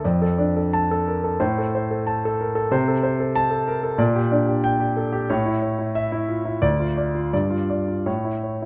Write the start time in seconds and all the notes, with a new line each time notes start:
0.04 F2 D5
0.22 A4
0.38 D4 D5
0.56 A4
0.73 A5
0.91 A4
1.08 A#4
1.24 A4
1.40 A2 C5
1.58 A4
1.75 C5
1.91 A4
2.07 A5
2.25 A4
2.41 A#4
2.55 A4
2.71 C3 C5
2.88 A4
3.03 C5
3.20 A4
3.36 A5
3.51 A4
3.68 A#4
3.83 A4
3.98 A#2 D5
4.15 G4
4.31 D4 D5
4.46 G4
4.64 G5
4.80 G4
4.97 A4
5.12 G4
5.30 A2 C#5
5.46 E4
5.62 C#5
5.79 E4
5.95 E5
6.12 E4
6.29 F4
6.45 E4
6.62 D2 D5
6.80 F4
6.97 D5
7.15 F4
7.33 G2 D5
7.50 F4
7.70 D5
7.88 F4
8.06 A2 C#5
8.24 E4
8.43 C#5
8.62 E4